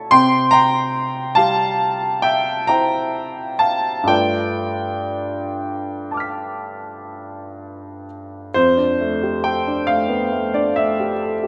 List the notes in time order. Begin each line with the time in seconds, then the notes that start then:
Already playing: E4 C#5 A5 C#6
0.11 C3 G5 C6
0.51 G5 A#5
1.35 G3 F5 A5
2.22 E5 G5
2.67 E4 C5 G5 A#5
3.59 F5 A5
4.04 G2 A3 D4 F4
4.08 B4 D5 G5
6.11 A5 D6
6.17 F6 B6
8.54 F2 C5
8.77 D4
9.01 A3
9.23 G4
9.44 A4 G5
9.68 D4
9.87 A3 F5
10.09 B3
10.33 A3
10.54 D4 D5
10.76 A3 E5
11.00 G4
11.23 A4
11.43 G4